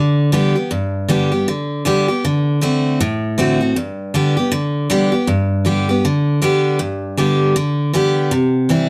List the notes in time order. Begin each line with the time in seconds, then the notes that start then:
Already playing: D3
0.32 D3 G3 B3 G4
0.56 B3 G4
0.71 G2
1.09 D3 G3 B3 G4
1.32 B3 G4
1.48 D3
1.85 D3 G3 B3 G4
2.08 B3 G4
2.25 D3
2.61 D3 A3 C4 F#4
3.00 A2
3.38 D3 A3 C4 F#4
3.61 C4 F#4
3.76 G2
4.14 D3 G3 B3 G4
4.37 B3 G4
4.52 D3
4.90 D3 G3 B3 G4
5.12 B3 G4
5.27 G2
5.65 D3 G3 B3 G4
5.89 B3 G4
6.05 D3
6.42 D3 G3 B3 G4
6.79 G2
7.17 D3 G3 B3 G4
7.56 D3
7.93 D3 G3 B3 G4
8.31 C3
8.69 E3 G3 C4 E4